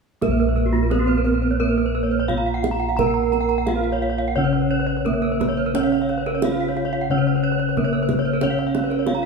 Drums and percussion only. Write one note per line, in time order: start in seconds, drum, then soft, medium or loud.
0.22 kendang high soft
0.22 kendang low soft
0.57 kendang slap soft
0.75 kendang slap soft
0.91 kendang slap soft
0.91 kendang high soft
1.26 kendang slap soft
2.29 kendang slap soft
2.29 kendang low soft
2.64 kendang slap soft
2.64 kendang high soft
2.99 kendang high soft
2.99 kendang low soft
3.33 kendang high soft
3.49 kendang slap soft
3.67 kendang slap soft
3.67 kendang high soft
4.02 kendang slap soft
5.06 kendang slap soft
5.06 kendang low soft
5.41 kendang slap soft
5.41 kendang high soft
5.41 kendang low soft
5.75 kendang high soft
5.75 kendang low soft
6.09 kendang slap soft
6.26 kendang slap soft
6.42 kendang slap soft
6.42 kendang high soft
6.76 kendang slap soft
7.77 kendang slap soft
7.77 kendang low soft
8.09 kendang slap soft
8.09 kendang high soft
8.09 kendang low soft
8.41 kendang high soft
8.41 kendang low soft
8.58 kendang slap soft
8.75 kendang slap soft
8.75 kendang high soft
8.91 kendang slap soft
9.06 kendang slap soft
9.06 kendang high soft